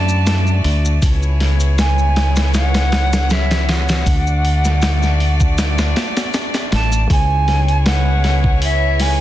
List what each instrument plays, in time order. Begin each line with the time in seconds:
Already playing: fingered electric bass F#2, violin section A3 D4 F#4 D5, flute A5
0.09 maracas
0.27 snare, open hi-hat, maracas
0.47 maracas
0.64 fingered electric bass D2, open hi-hat
0.85 maracas
1.02 fingered electric bass C#2, violin section B3 E4 G#4 C#5, kick, open hi-hat, maracas
1.23 maracas
1.40 snare, open hi-hat
1.60 closed hi-hat, maracas
1.78 flute G#5, snare, open hi-hat, maracas
1.98 maracas
2.16 snare, open hi-hat
2.36 snare, open hi-hat, maracas
2.54 flute F#5, snare, open hi-hat, maracas
2.74 snare, open hi-hat, maracas
2.92 snare, open hi-hat
3.13 snare, open hi-hat, maracas
3.30 flute E5, snare, open hi-hat, maracas
3.51 snare, open hi-hat, maracas
3.69 flute F#5, snare, open hi-hat
3.88 snare, open hi-hat, maracas
4.06 fingered electric bass D2, violin section A3 D4 F#4 D5, kick, open hi-hat, maracas
4.27 maracas
4.45 open hi-hat
4.65 snare, maracas
4.82 snare, open hi-hat, maracas
5.03 snare, maracas
5.20 open hi-hat
5.40 kick, maracas
5.58 snare, open hi-hat, maracas
5.78 snare, open hi-hat, maracas
5.96 snare, open hi-hat
6.17 snare, open hi-hat, maracas
6.34 snare, open hi-hat, maracas
6.54 snare, open hi-hat, maracas
6.72 fingered electric bass A1, flute A5, snare, open hi-hat
6.92 closed hi-hat, maracas
7.10 fingered electric bass C#2, violin section B3 E4 G#4 C#5, flute G#5, kick, open hi-hat
7.48 snare, open hi-hat
7.68 closed hi-hat
7.86 flute F#5, snare, open hi-hat
8.24 snare, open hi-hat
8.44 kick
8.62 flute E5, open hi-hat
9.00 flute G#5, snare, open hi-hat